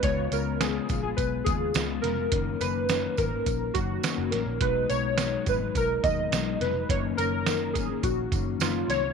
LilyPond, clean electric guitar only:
\new Staff \with { instrumentName = "Clean electric guitar" } { \clef bass \time 4/4 \key fis \major \tempo 4 = 105 <cis gis b eis'>8 <cis gis b eis'>8 <cis gis b eis'>8 <cis gis b eis'>16 <gis b eis'>8. <cis gis b eis'>8 <cis gis b eis'>8 <cis gis b eis'>16 <gis b eis'>16 | <fis, dis ais cis'>8 <fis, dis ais cis'>8 <fis, dis ais cis'>8 <fis, dis ais cis'>16 <dis ais cis'>8. <fis, dis ais cis'>8 <fis, dis ais cis'>8 <fis, dis ais cis'>16 <dis ais cis'>16 | <b, fis gis dis'>8 <b, fis gis dis'>8 <b, fis gis dis'>8 <b, fis gis dis'>16 <fis gis dis'>8. <b, fis gis dis'>8 <b, fis gis dis'>8 <b, fis gis dis'>16 <fis gis dis'>16 | <fis, dis ais cis'>8 <fis, dis ais cis'>8 <fis, dis ais cis'>8 <fis, dis ais cis'>16 <dis ais cis'>8. <fis, dis ais cis'>8 <fis, dis ais cis'>8 <fis, dis ais cis'>16 <dis ais cis'>16 | }